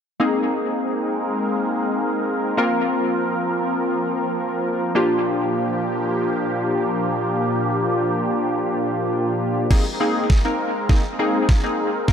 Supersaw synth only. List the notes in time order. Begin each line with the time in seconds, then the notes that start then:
0.20 G#3 C4 A#4
2.58 F3
4.95 A#2 A#3 G4
9.70 G#3 C4 A#4
12.08 F3